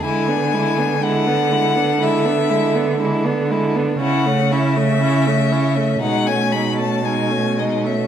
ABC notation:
X:1
M:4/4
L:1/16
Q:1/4=60
K:E
V:1 name="Violin"
g4 f4 e4 z4 | f2 e6 f g b a g2 d e |]
V:2 name="Violin"
E =D E D E D E D E D E D E D E D | E C E C E C E C D C D C D C D C |]
V:3 name="Viola"
G, B, G, B, G, B, G, B, G, B, G, B, G, B, G, B, | C A, C A, C A, C A, G, A, G, A, G, A, G, A, |]
V:4 name="Cello" clef=bass
=D,16 | C,8 B,,8 |]